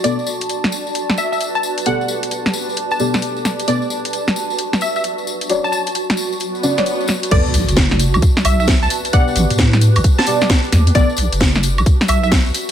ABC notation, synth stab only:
X:1
M:4/4
L:1/16
Q:"Swing 16ths" 1/4=132
K:Bm
V:1 name="Synth stab"
[B,Ad] z12 z3 | [B,GAd]8- [B,GAd]2 [B,GAd]6 | [B,Ad] z12 z3 | [Fcd]8- [Fcd]2 [CFd] [Fcd]4- [Fcd] |
[B,Ad] z12 z3 | [B,Gd]8- [B,Gd]2 [B,Gd]6 | [B,Ad] z12 z3 |]